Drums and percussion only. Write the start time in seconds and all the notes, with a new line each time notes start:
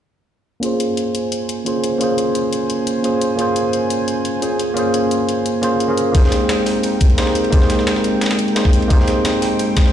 0.63 closed hi-hat
0.80 closed hi-hat
0.97 closed hi-hat
1.15 closed hi-hat
1.32 closed hi-hat
1.49 closed hi-hat
1.66 closed hi-hat
1.84 closed hi-hat
2.01 closed hi-hat
2.18 closed hi-hat
2.35 closed hi-hat
2.52 closed hi-hat
2.70 closed hi-hat
2.87 closed hi-hat
3.04 closed hi-hat
3.21 closed hi-hat
3.39 closed hi-hat
3.56 closed hi-hat
3.73 closed hi-hat
3.90 closed hi-hat
4.08 closed hi-hat
4.25 closed hi-hat
4.42 closed hi-hat
4.59 closed hi-hat
4.77 closed hi-hat
4.94 closed hi-hat
5.11 closed hi-hat
5.29 closed hi-hat
5.46 closed hi-hat
5.63 closed hi-hat
5.80 closed hi-hat
5.97 closed hi-hat
6.15 kick, closed hi-hat, ride
6.24 snare
6.32 snare, closed hi-hat, ride
6.49 snare, closed hi-hat, ride
6.66 snare, closed hi-hat, open hi-hat
6.83 closed hi-hat, ride
7.01 kick, closed hi-hat, ride
7.10 ride
7.18 snare, closed hi-hat, ride
7.27 snare
7.35 closed hi-hat, ride
7.44 ride
7.52 kick, closed hi-hat, ride
7.62 snare
7.70 snare, closed hi-hat, ride
7.79 snare
7.87 snare, closed hi-hat, ride
7.96 snare
8.04 closed hi-hat, ride
8.21 snare, closed hi-hat, ride
8.26 snare, ride
8.31 snare, ride
8.39 closed hi-hat, ride
8.48 ride
8.56 snare, closed hi-hat, ride
8.65 kick, snare
8.73 closed hi-hat, ride
8.82 ride
8.90 kick, closed hi-hat, ride
9.00 snare
9.08 snare, closed hi-hat, ride
9.25 snare, closed hi-hat, ride
9.42 snare, closed hi-hat, open hi-hat
9.59 closed hi-hat, ride
9.77 kick, snare, closed hi-hat, ride
9.86 snare